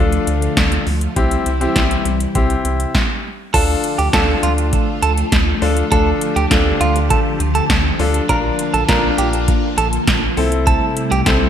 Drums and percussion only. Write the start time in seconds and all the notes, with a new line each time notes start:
0.12 closed hi-hat
0.27 closed hi-hat
0.42 closed hi-hat
0.57 kick, snare, closed hi-hat
0.72 closed hi-hat
0.87 open hi-hat
1.01 closed hi-hat
1.16 kick, closed hi-hat
1.31 closed hi-hat
1.46 closed hi-hat
1.61 closed hi-hat
1.76 kick, snare, closed hi-hat
1.91 closed hi-hat
2.05 closed hi-hat
2.20 closed hi-hat
2.35 kick, closed hi-hat
2.50 closed hi-hat
2.65 closed hi-hat
2.80 closed hi-hat
2.95 kick, snare
3.54 kick, closed hi-hat, crash
3.84 closed hi-hat
3.99 closed hi-hat
4.13 kick, snare, closed hi-hat
4.43 closed hi-hat
4.58 closed hi-hat
4.73 kick, closed hi-hat
5.03 closed hi-hat
5.18 closed hi-hat
5.32 kick, snare, closed hi-hat
5.62 open hi-hat
5.77 closed hi-hat
5.92 kick, closed hi-hat
6.21 closed hi-hat
6.36 closed hi-hat
6.51 kick, snare, closed hi-hat
6.81 closed hi-hat
6.96 closed hi-hat
7.10 kick, closed hi-hat
7.40 closed hi-hat
7.55 closed hi-hat
7.70 kick, snare, closed hi-hat
7.99 open hi-hat
8.14 closed hi-hat
8.29 kick, closed hi-hat
8.59 closed hi-hat
8.74 closed hi-hat
8.89 kick, snare, closed hi-hat
9.18 closed hi-hat
9.33 closed hi-hat
9.48 kick, closed hi-hat
9.78 closed hi-hat
9.93 closed hi-hat
10.07 kick, snare, closed hi-hat
10.37 open hi-hat
10.52 closed hi-hat
10.67 kick, closed hi-hat
10.97 closed hi-hat
11.12 closed hi-hat
11.26 kick, snare, closed hi-hat